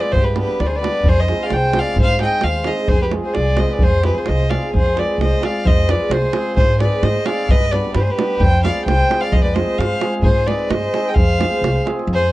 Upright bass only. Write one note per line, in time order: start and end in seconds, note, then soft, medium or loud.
0.14 0.41 G2 loud
0.60 0.87 D2 medium
1.04 1.31 F2 medium
1.51 1.79 C2 medium
1.96 2.24 G#2 medium
2.43 2.71 D#2 medium
2.90 3.17 F2 medium
3.37 3.64 C2 medium
3.82 4.09 F2 medium
4.29 4.56 C2 medium
4.74 5.01 F2 medium
5.18 5.32 C2 medium
5.65 5.93 F2 loud
6.10 6.24 C2 medium
6.57 6.85 G#2 loud
7.03 7.17 G#2 medium
7.49 7.77 G2 medium
7.95 8.09 G2 medium
8.40 8.68 F2 medium
8.86 9.00 C2 medium
9.32 9.60 F2 medium
9.79 9.93 G2 medium
10.22 10.51 G#2 medium
10.70 10.84 G2 medium
11.17 11.44 F2 medium
11.61 11.75 C2 medium
12.07 12.32 F2 loud